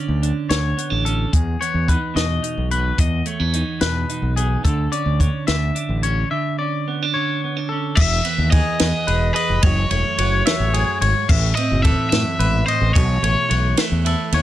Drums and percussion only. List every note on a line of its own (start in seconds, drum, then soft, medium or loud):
0.23 closed hi-hat medium
0.50 snare loud
0.50 closed hi-hat medium
0.78 closed hi-hat medium
1.06 closed hi-hat medium
1.33 kick loud
1.33 closed hi-hat medium
1.62 closed hi-hat medium
1.88 kick medium
1.88 closed hi-hat medium
2.17 snare loud
2.17 closed hi-hat medium
2.44 closed hi-hat medium
2.71 closed hi-hat medium
2.98 kick loud
2.98 closed hi-hat medium
3.26 closed hi-hat medium
3.53 closed hi-hat medium
3.81 snare loud
3.81 closed hi-hat medium
4.09 closed hi-hat medium
4.37 closed hi-hat medium
4.65 kick loud
4.65 closed hi-hat medium
4.92 closed hi-hat medium
5.20 kick medium
5.20 closed hi-hat medium
5.47 snare loud
5.47 closed hi-hat medium
5.76 closed hi-hat medium
6.03 closed hi-hat medium
7.97 kick loud
7.97 crash loud
8.25 ride medium
8.52 kick medium
8.52 ride medium
8.79 snare loud
8.79 ride loud
9.08 ride medium
9.36 ride medium
9.63 kick loud
9.63 ride medium
9.91 ride medium
10.18 ride medium
10.47 snare loud
10.47 ride loud
10.74 ride medium
11.02 ride medium
11.29 kick loud
11.29 crash loud
11.57 ride medium
11.85 kick medium
11.85 ride medium
12.12 snare loud
12.12 ride medium
12.40 ride medium
12.68 ride medium
12.95 kick loud
12.95 ride medium
13.24 ride medium
13.51 ride medium
13.77 snare loud
13.77 ride loud
14.06 ride medium
14.32 ride medium